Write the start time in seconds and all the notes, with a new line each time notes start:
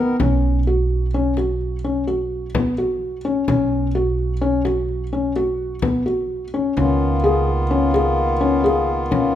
Already playing: B1 D#3 B3 A#4
0.20 B1 C#4, frame drum
0.67 F#4, frame drum
0.90 frame drum
1.14 C#4
1.37 F#4, frame drum
1.61 frame drum
1.84 C#4
2.07 F#4
2.55 B3, frame drum
2.78 F#4, frame drum
3.25 C#4
3.48 B1 C#4, frame drum
3.95 F#4, frame drum
4.19 frame drum
4.41 C#4
4.65 F#4, frame drum
4.89 frame drum
5.13 C#4
5.36 F#4
5.82 B3, frame drum
6.06 F#4, frame drum
6.54 C#4
6.77 C#2 D#3 A#3 B3 C#4 F4, frame drum
7.24 G#4, frame drum
7.47 frame drum
7.71 C#4
7.94 G#4, frame drum
8.18 frame drum
8.41 C#4
8.64 G#4
9.11 C#4, frame drum